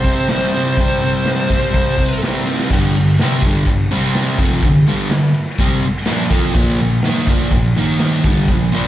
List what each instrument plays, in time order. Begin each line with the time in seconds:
Already playing: distorted electric guitar C3, lead electric guitar C5
0.04 distorted electric guitar G3 C4, kick
0.28 distorted electric guitar C3 G3, snare, open hi-hat
0.32 distorted electric guitar C4
0.54 distorted electric guitar G3 C4
0.77 distorted electric guitar C3 G3, kick, open hi-hat
0.81 distorted electric guitar C4
1.01 distorted electric guitar G3 C4
1.25 snare, open hi-hat
1.50 distorted electric guitar G3 C4, kick
1.73 distorted electric guitar C3 G3 C4, kick, open hi-hat
1.98 distorted electric guitar G3 C4, kick
2.23 distorted electric guitar C3 G3 C4, snare, open hi-hat
2.46 distorted electric guitar G3 C4, snare
2.59 snare
2.71 distorted electric guitar G2 D3 G3, kick, crash
2.95 distorted electric guitar G2 D3, crash
3.19 distorted electric guitar C3, snare, crash
3.23 distorted electric guitar G3 C4
3.42 distorted electric guitar G2, kick, crash
3.46 distorted electric guitar D3 G3
3.66 distorted electric guitar G2 D3, kick, crash
3.91 distorted electric guitar C3 G3 C4, crash
4.14 snare, crash
4.38 distorted electric guitar F2 C3 F3, kick, crash
4.63 distorted electric guitar G2 D3, kick, crash
4.86 distorted electric guitar G2 D3 G3, crash
5.10 distorted electric guitar G2 D3, snare, crash
5.34 crash
5.58 distorted electric guitar C3 G3 C4, kick, crash
5.82 muted distorted electric guitar stroke, crash
6.05 distorted electric guitar A#2 F3 A#3, snare, crash
6.30 distorted electric guitar F3 C4 F4, kick, crash
6.43 snare
6.54 distorted electric guitar A#2 F3 A#3, kick, crash
6.78 distorted electric guitar A#2 F3, crash
7.02 distorted electric guitar D#3 A#3, snare, crash
7.07 distorted electric guitar D#4
7.27 distorted electric guitar A#2 F3 A#3, kick, crash
7.51 distorted electric guitar A#2 F3, kick, crash
7.75 distorted electric guitar D#3 A#3 D#4, crash
7.99 snare, crash
8.23 distorted electric guitar G2 D3 G3, kick, crash
8.37 snare
8.48 distorted electric guitar A#2 F3, kick, crash
8.72 distorted electric guitar A#2 F3 A#3, crash